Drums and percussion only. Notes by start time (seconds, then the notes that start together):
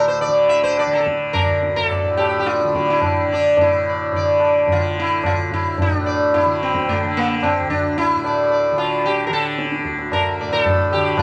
0.21 tabla tin
0.77 tabla na
1.06 tabla ke
1.34 tabla na, tabla ge
1.63 tabla te
1.76 tabla ge
1.91 tabla tin, tabla ge
2.19 tabla na
2.47 tabla te
2.61 tabla te
2.75 tabla ke
2.88 tabla te
3.02 tabla na, tabla ge
3.29 tabla ge
3.57 tabla tin, tabla ge
4.12 tabla tin, tabla ge
4.40 tabla na
4.67 tabla tin, tabla ge
5.24 tabla na, tabla ge
5.50 tabla ge
5.78 tabla tin, tabla ge
6.33 tabla tin, tabla ge
6.75 tabla ke
6.88 tabla tin, tabla ge
7.43 tabla na, tabla ge
7.70 tabla ge
7.98 tabla tin
8.24 tabla na
8.51 tabla tin
8.78 tabla na
9.04 tabla tin
9.31 tabla na
9.58 tabla te
9.72 tabla te
9.85 tabla ke
9.99 tabla te
10.12 tabla na, tabla ge
10.65 tabla tin, tabla ge
10.92 tabla na
11.18 tabla na, tabla ge